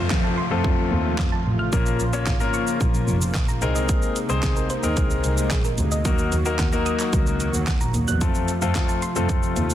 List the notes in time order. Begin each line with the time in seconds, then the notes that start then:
Already playing: C3 F3 A3 C4 F4 C5, downlifter
0.10 F3 F5, kick, snare, clap
0.24 A5
0.38 C6
0.51 F2 A3 C4 F4 A4
0.64 F2 F3, kick
0.92 D#2
1.18 F2 F5, kick, snare, clap
1.32 A5
1.46 A1
1.59 F6
1.72 A#1 F3 A#3 C#4 F4 A#4, kick, shaker
1.86 shaker
2.00 A#1, shaker
2.13 A#3 C#4 F4 C#5, shaker
2.27 G#1 F5, kick, snare, clap, shaker
2.40 A#3 C#4 F4 A#4 A#5, shaker
2.54 C#6, shaker
2.67 shaker
2.81 A#1 F3, kick, shaker
2.94 shaker
3.08 F1, shaker
3.22 shaker
3.35 A#1 F5, kick, snare, clap, shaker
3.48 A#5, shaker
3.62 C2 C3 G#3 C4 D#4 G#4 A#4, shaker
3.75 D#5, shaker
3.89 G#3, kick, closed hi-hat, shaker
4.02 shaker
4.16 closed hi-hat, shaker
4.29 C2 C4 D#4 G#4 C5, shaker
4.43 C3 G#4, kick, snare, clap, closed hi-hat, shaker
4.56 A#4, shaker
4.70 C5, closed hi-hat, shaker
4.83 D#2 C4 D#4 G#4 A#4, shaker
4.97 C2 G#3, kick, closed hi-hat, shaker
5.10 shaker
5.24 C2, closed hi-hat, shaker
5.38 shaker
5.51 A#1 G#4, kick, snare, clap, closed hi-hat, shaker
5.64 A#4, shaker
5.78 D2, closed hi-hat, shaker
5.92 D#5, shaker
6.05 D#2 D#3 F#3 A#3 D#4 F#4 A#4, kick, closed hi-hat, shaker
6.18 shaker
6.32 D#2, closed hi-hat, shaker
6.45 A#3 D#4 F#4 A#4, shaker
6.59 D#2 F#5, kick, snare, clap, closed hi-hat, shaker
6.72 A#3 D#4 F#4 A#4 A#5, shaker
6.86 D#6, closed hi-hat, shaker
7.00 clap, shaker
7.13 C#2 F#3, kick, closed hi-hat, shaker
7.27 shaker
7.40 D#2, closed hi-hat, shaker
7.54 D#2, shaker
7.67 F#5, kick, snare, clap, closed hi-hat, shaker
7.81 A#1 A#5, shaker
7.94 D#2, closed hi-hat, shaker
8.08 E2 F#6, shaker
8.21 F2 C3 F3 A3 C4 F4 A4, kick, closed hi-hat, shaker
8.35 shaker
8.48 closed hi-hat, shaker
8.62 F2 A3 C4 F4 A4, shaker
8.75 F3 F5, kick, snare, clap, closed hi-hat, shaker
8.89 A5, shaker
9.02 C6, closed hi-hat, shaker
9.16 F2 A3 C4 F4 A4, shaker
9.29 F2 F3, kick, closed hi-hat, shaker
9.43 shaker
9.56 D#2, closed hi-hat, shaker
9.70 shaker